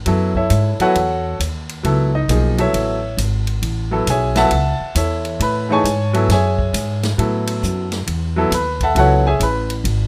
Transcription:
0.06 0.49 F#2 medium
0.06 0.32 F#3 medium
0.06 0.33 B3 medium
0.06 0.33 E4 medium
0.06 0.33 A4 medium
0.06 ride medium
0.35 0.78 E4 medium
0.35 0.78 A4 soft
0.35 0.78 C#5 medium
0.35 0.78 E5 medium
0.35 kick soft
0.50 0.78 G#2 medium
0.50 hi-hat pedal medium
0.50 ride medium
0.79 0.94 F#3 medium
0.79 0.94 B3 medium
0.79 0.95 E4 medium
0.79 1.37 F#4 medium
0.79 1.37 A4 medium
0.79 0.95 B4 medium
0.79 1.37 C#5 medium
0.79 1.37 F#5 medium
0.79 muted upright bass stroke soft
0.79 ride soft
0.95 1.38 E2 medium
0.95 ride medium
1.39 1.83 D#2 medium
1.39 hi-hat pedal medium
1.39 ride medium
1.69 ride soft
1.83 2.27 C#2 medium
1.83 2.10 F#3 medium
1.83 2.11 B3 medium
1.83 2.11 E4 medium
1.83 2.11 A4 medium
1.83 ride medium
2.15 2.28 D#4 medium
2.15 2.56 D#5 medium
2.28 2.72 B1 medium
2.28 2.55 F3 medium
2.28 2.55 A#3 soft
2.28 2.56 D#4 medium
2.28 2.56 G#4 medium
2.28 hi-hat pedal medium
2.28 ride medium
2.58 2.97 F#3 medium
2.58 2.97 B3 soft
2.58 2.97 E4 medium
2.58 2.97 A4 medium
2.58 3.15 C#5 medium
2.58 3.15 E5 medium
2.58 ride soft
2.73 3.17 A1 medium
2.73 ride medium
3.17 3.61 G#1 medium
3.17 hi-hat pedal medium
3.17 ride medium
3.47 ride soft
3.62 4.05 A1 medium
3.62 ride medium
3.91 4.05 F#3 medium
3.91 4.06 B3 medium
3.91 4.06 E4 medium
3.91 4.06 A4 medium
4.07 4.50 B1 medium
4.07 4.37 G#4 medium
4.07 4.37 C#5 medium
4.07 4.36 E5 medium
4.07 4.37 G#5 medium
4.07 hi-hat pedal medium
4.07 ride medium
4.35 4.50 F#3 medium
4.35 4.50 B3 medium
4.35 4.50 E4 medium
4.35 4.50 A4 medium
4.35 4.93 E5 medium
4.35 4.93 F#5 medium
4.35 4.92 A5 loud
4.35 snare soft
4.35 ride soft
4.51 4.78 C#2 medium
4.51 ride medium
4.80 muted upright bass stroke soft
4.95 5.39 E2 medium
4.95 5.66 E4 soft
4.95 5.66 A4 medium
4.95 5.66 C#5 medium
4.95 5.66 E5 medium
4.95 hi-hat pedal medium
4.95 ride medium
5.25 ride soft
5.40 5.83 A2 medium
5.40 5.70 B4 medium
5.40 5.69 B5 medium
5.40 ride medium
5.69 5.83 E3 medium
5.69 5.83 A3 medium
5.69 5.84 D#4 medium
5.69 5.84 G#4 medium
5.69 6.27 C#5 medium
5.69 6.27 A5 medium
5.69 6.27 C#6 medium
5.73 6.27 G#5 medium
5.84 6.27 G#2 medium
5.84 hi-hat pedal medium
5.84 ride medium
6.13 6.28 F#3 medium
6.13 6.28 B3 medium
6.13 6.28 E4 medium
6.13 6.28 A4 medium
6.13 ride soft
6.28 6.72 F#2 medium
6.28 7.00 G#5 medium
6.28 snare soft
6.28 ride medium
6.33 7.00 G#4 medium
6.33 7.01 C#5 medium
6.33 7.00 E5 medium
6.59 kick medium
6.73 7.17 G#2 medium
6.73 hi-hat pedal medium
6.73 ride medium
7.03 snare medium
7.03 ride soft
7.18 7.61 A2 medium
7.18 7.86 F#3 medium
7.18 7.86 B3 medium
7.18 7.86 E4 medium
7.18 7.86 A4 medium
7.18 ride medium
7.47 ride medium
7.63 8.06 F#2 medium
7.63 hi-hat pedal medium
7.92 snare soft
7.92 ride soft
8.07 8.50 E2 medium
8.07 ride medium
8.36 8.50 F#3 medium
8.36 8.50 B3 medium
8.36 8.51 E4 medium
8.36 8.51 A4 medium
8.51 8.94 D#2 medium
8.51 8.81 B4 medium
8.51 8.81 B5 medium
8.51 hi-hat pedal medium
8.51 ride medium
8.80 8.96 A4 medium
8.80 8.97 E5 medium
8.80 8.97 F#5 medium
8.80 8.97 A5 medium
8.80 kick medium
8.80 ride soft
8.95 9.39 C#2 medium
8.95 9.22 F#3 medium
8.95 9.22 B3 medium
8.95 9.22 E4 medium
8.95 9.23 A4 medium
8.95 9.25 F#5 medium
8.95 ride medium
9.00 9.26 F#4 medium
9.00 9.26 C#5 medium
9.27 9.41 G#4 medium
9.27 9.41 C#5 medium
9.27 9.41 E5 medium
9.27 9.41 G#5 medium
9.40 9.83 A1 medium
9.40 9.70 B4 medium
9.40 9.70 B5 medium
9.40 hi-hat pedal soft
9.40 ride medium
9.70 ride soft
9.84 10.07 G#1 medium
9.84 ride medium

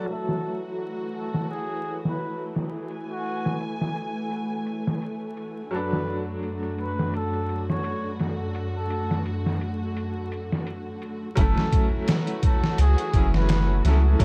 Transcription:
0.06 5.69 E3 medium
0.06 5.68 F#3 medium
0.06 11.33 A3 medium
0.06 5.70 A3 medium
0.06 5.69 F#4 medium
0.06 2.88 F#4 medium
0.06 0.58 A4 medium
0.06 closed hi-hat medium
0.11 5.70 E5 medium
0.29 snare soft
0.43 closed hi-hat medium
0.78 closed hi-hat medium
0.98 closed hi-hat soft
1.13 1.46 A4 medium
1.13 closed hi-hat medium
1.34 snare soft
1.49 1.99 G#4 medium
1.49 closed hi-hat medium
1.69 closed hi-hat soft
1.84 closed hi-hat medium
2.05 2.51 B4 medium
2.05 snare soft
2.20 closed hi-hat medium
2.55 snare soft
2.55 closed hi-hat medium
2.90 5.70 G#5 medium
2.90 closed hi-hat medium
3.11 3.57 F#4 medium
3.25 closed hi-hat medium
3.46 snare soft
3.60 closed hi-hat medium
3.81 snare soft
3.96 closed hi-hat medium
4.31 closed hi-hat medium
4.66 closed hi-hat medium
4.87 snare soft
5.02 closed hi-hat medium
5.37 closed hi-hat medium
5.71 11.33 F#2 medium
5.71 11.33 D3 medium
5.71 11.33 F#3 medium
5.71 11.33 F#4 medium
5.71 11.34 F#4 medium
5.71 11.34 A4 medium
5.71 6.22 B4 medium
5.71 closed hi-hat medium
5.76 11.35 D4 medium
5.93 snare soft
6.07 closed hi-hat medium
6.43 closed hi-hat medium
6.63 closed hi-hat soft
6.78 7.11 B4 medium
6.78 closed hi-hat medium
6.99 snare soft
7.14 7.64 A4 medium
7.14 closed hi-hat medium
7.33 closed hi-hat soft
7.49 closed hi-hat medium
7.70 8.16 C#5 medium
7.70 snare soft
7.84 closed hi-hat medium
8.19 snare soft
8.19 closed hi-hat medium
8.55 closed hi-hat medium
8.77 9.22 A4 medium
8.90 closed hi-hat medium
9.11 snare soft
9.26 closed hi-hat medium
9.46 snare soft
9.61 closed hi-hat medium
9.97 closed hi-hat medium
10.32 closed hi-hat medium
10.52 snare soft
10.67 closed hi-hat medium
11.02 closed hi-hat medium
11.36 11.55 F#1 loud
11.36 14.25 E3 medium
11.36 13.09 F#3 medium
11.36 14.25 A3 medium
11.36 13.10 C#4 medium
11.36 13.11 E4 medium
11.36 14.25 F#4 medium
11.36 14.17 F#4 medium
11.36 11.87 A4 loud
11.36 kick loud
11.36 closed hi-hat medium
11.40 13.11 A3 loud
11.58 snare soft
11.72 kick medium
11.72 closed hi-hat medium
12.08 snare loud
12.08 closed hi-hat medium
12.27 closed hi-hat soft
12.43 12.76 A4 medium
12.43 kick loud
12.43 closed hi-hat medium
12.64 snare medium
12.78 12.96 C#2 medium
12.78 13.28 G#4 loud
12.78 closed hi-hat medium
12.98 closed hi-hat soft
13.13 13.81 F#1 medium
13.13 13.25 F#3 medium
13.13 13.25 C#4 medium
13.13 13.25 E4 medium
13.13 13.26 G#4 medium
13.13 kick medium
13.13 closed hi-hat medium
13.34 13.81 B4 loud
13.34 snare soft
13.49 snare loud
13.49 closed hi-hat medium
13.84 14.16 C#2 medium
13.84 14.16 F#3 medium
13.84 14.17 C#4 medium
13.84 14.17 E4 medium
13.84 14.17 A4 medium
13.84 snare soft
13.84 closed hi-hat medium
14.19 14.25 F#1 loud
14.19 14.25 F#3 loud
14.19 14.25 C#4 medium
14.19 14.25 E4 medium
14.19 kick loud
14.19 closed hi-hat loud

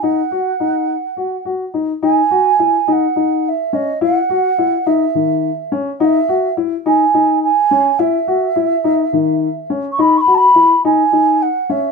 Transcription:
0.03 0.20 D#4 medium
0.03 1.45 F#5 medium
0.31 0.48 F#4 medium
0.60 0.93 D#4 medium
1.17 1.33 F#4 medium
1.45 1.62 F#4 medium
1.74 1.90 D#4 medium
2.03 2.19 D#4 medium
2.03 2.88 G#5 loud
2.31 2.47 F#4 medium
2.59 2.76 E4 medium
2.88 3.04 D#4 medium
2.88 2.93 G#5 medium
2.92 3.45 F#5 medium
3.16 3.49 D#4 medium
3.45 3.76 E5 medium
3.45 3.50 F#5 medium
3.73 3.89 C#4 medium
3.73 4.02 D#5 medium
4.01 4.18 E4 medium
4.01 4.88 F#5 medium
4.30 4.46 F#4 medium
4.58 4.75 E4 medium
4.86 5.03 D#4 medium
4.86 5.72 E5 medium
5.15 5.48 D#3 medium
5.72 5.88 C#4 medium
6.00 6.17 D#4 medium
6.00 6.05 F#5 medium
6.04 6.53 E5 medium
6.29 6.45 F#4 medium
6.57 6.74 E4 medium
6.86 7.02 D#4 medium
6.86 7.39 G#5 loud
7.14 7.47 D#4 medium
7.43 8.01 G#5 medium
7.71 7.88 C#4 medium
7.99 8.16 E4 medium
7.99 9.70 E5 medium
8.28 8.44 F#4 medium
8.56 8.73 E4 medium
8.84 9.01 D#4 medium
9.13 9.46 D#3 medium
9.70 9.87 C#4 medium
9.92 10.02 C#6 medium
9.99 10.15 D#4 medium
9.99 10.18 B5 loud
10.17 10.35 B5 loud
10.17 10.22 C#6 medium
10.27 10.44 F#4 medium
10.34 10.39 A5 medium
10.34 10.84 B5 loud
10.55 10.72 E4 medium
10.85 11.01 D#4 medium
10.85 11.44 G#5 loud
11.13 11.46 D#4 medium
11.42 11.71 F#5 medium
11.69 11.86 C#4 medium
11.69 11.92 E5 medium

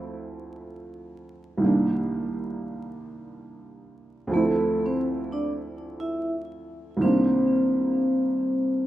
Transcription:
0.00 1.56 D2 medium
0.00 1.57 F3 medium
0.00 1.58 A3 medium
0.00 1.59 C4 medium
0.00 1.60 E4 medium
1.58 4.26 C2 medium
1.58 4.27 D#3 medium
1.62 4.28 G3 medium
1.62 4.29 A#3 medium
1.66 4.30 D4 medium
4.27 6.95 D2 medium
4.27 6.96 F3 medium
4.32 6.98 A3 medium
4.32 4.84 A3 loud
4.32 6.99 C4 medium
4.32 4.84 A4 medium
4.36 7.00 E4 medium
4.86 4.98 C4 medium
4.86 4.98 C5 medium
5.32 5.51 D4 medium
5.32 5.51 D5 medium
6.00 6.31 E4 medium
6.00 6.31 E5 medium
6.97 8.87 C2 medium
6.97 8.87 D#3 medium
7.01 8.87 G3 medium
7.01 8.87 A#3 medium
7.01 8.87 C4 loud
7.01 8.87 C5 medium
7.05 8.87 D4 medium

